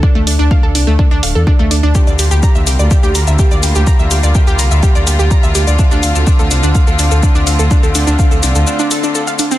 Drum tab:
HH |--o---o---o---o-|--o---o---o---o-|--o---o---o---o-|--o---o---o---o-|
SH |----------------|xxxxxxxxxxxxxxxx|xxxxxxxxxxxxxxxx|xxxxxxxxxxxxxxxx|
BD |o---o---o---o---|o---o---o---o---|o---o---o---o---|o---o---o---o---|

HH |--o---o---o---o-|
SH |xxxxxxxxxxxxxxxx|
BD |o---o-----------|